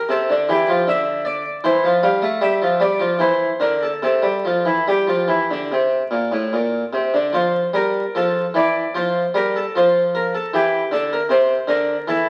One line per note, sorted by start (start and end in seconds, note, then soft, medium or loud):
0.00 0.10 A#4 medium
0.09 0.28 C3 medium
0.09 0.49 A4 medium
0.30 0.48 D3 medium
0.49 0.67 E3 medium
0.49 0.82 G4 medium
0.68 0.86 F3 medium
0.87 1.43 D3 medium
0.87 1.26 E5 medium
1.25 1.64 D5 medium
1.64 1.83 E3 medium
1.64 1.97 C5 medium
1.84 2.02 F3 medium
2.03 2.22 G3 medium
2.03 2.42 F5 medium
2.22 2.41 A3 medium
2.41 2.60 G3 medium
2.41 2.75 E5 medium
2.62 2.80 F3 medium
2.80 2.99 G3 medium
2.80 3.15 D5 medium
3.00 3.19 F3 soft
3.19 3.48 E3 medium
3.19 3.60 C5 medium
3.60 3.90 D3 soft
3.60 3.81 A#4 medium
3.83 4.02 A4 medium
4.03 4.22 C3 soft
4.03 4.86 A4 medium
4.22 4.42 G3 soft
4.45 4.64 F3 soft
4.65 4.85 E3 soft
4.88 5.07 G3 soft
4.88 6.94 G4 soft
5.07 5.27 F3 soft
5.28 5.48 E3 soft
5.51 5.69 D3 soft
5.72 6.01 C3 soft
6.11 6.30 A#2 soft
6.32 6.51 A2 soft
6.53 6.82 A#2 soft
6.93 7.12 C3 soft
7.14 7.33 D3 soft
7.33 7.62 F3 medium
7.33 7.69 C5 medium
7.74 8.03 G3 soft
7.74 8.15 A#4 medium
8.15 8.44 F3 medium
8.15 8.55 A4 medium
8.54 8.83 E3 soft
8.54 8.95 D5 medium
8.95 9.23 F3 medium
8.95 9.28 C5 medium
9.34 9.62 G3 soft
9.34 9.54 A#4 medium
9.56 9.74 A4 medium
9.76 10.31 F3 medium
9.76 10.09 C5 medium
10.15 10.33 A#4 medium
10.34 10.53 A4 medium
10.54 10.81 E3 medium
10.54 10.86 G4 medium
10.91 11.19 D3 medium
10.91 11.11 A4 medium
11.13 11.30 A#4 medium
11.29 11.57 C3 medium
11.29 11.68 C5 medium
11.67 11.95 D3 medium
11.67 12.06 A#4 medium
12.08 12.29 E3 medium
12.08 12.29 A4 medium